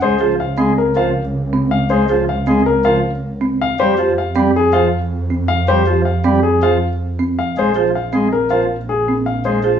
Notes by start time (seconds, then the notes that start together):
0.02 C#2 G#3 C5
0.20 F3 G#4
0.40 F5
0.58 G#3 C4
0.78 A#4
0.96 F3 A#4 F5
1.53 C4
1.71 F5
1.90 G#3 C5
2.09 F3 G#4
2.29 F5
2.47 G#3 C4
2.66 A#4
2.85 F3 A#4 F5
3.41 C4
3.61 F5
3.80 F2 G3 C5
3.98 F3 G4
4.18 F5
4.36 G3 C4
4.56 G#4
4.73 F3 G#4 F5
5.30 C4
5.48 F5
5.68 G3 C5
5.87 F3 G4
6.05 F5
6.24 G3 C4
6.43 G#4
6.62 F3 G#4 F5
7.19 C4
7.39 F5
7.57 A#1 G#3 C5
7.76 F3 G#4
7.95 F5
8.13 G#3 C4
8.32 A#4
8.50 F3 A#4 F5
8.89 G#4
9.08 C4
9.26 F5
9.45 G#3 C5
9.64 F3 G#4